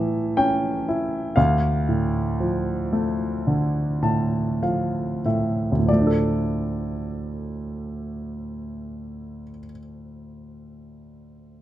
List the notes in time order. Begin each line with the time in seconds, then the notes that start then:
Already playing: A2 E3 E5
0.37 C#4 G5
0.88 E4
1.36 D2 F5
1.89 A2
2.40 F3
2.93 A3
3.47 D3
4.02 A2 A5
4.63 F3 F5
5.26 A2 E5
5.72 D2
5.79 A2
5.86 F3 D5
5.93 A3
6.00 D4
6.07 A4